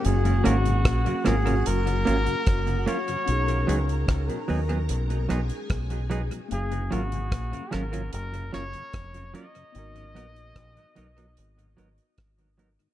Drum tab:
HH |xxxxxxxxxxxxxxxx|xxxxxxoxxxxxxxxx|xxxxxxxxxxxxxxxx|xxxxxxxxxxxxxxxx|
SD |----r-r-----r---|----r-----r-r---|----r-r---r-r---|----r-------r---|
BD |----o-------o---|----o-------o---|----o-------o---|----o-------o---|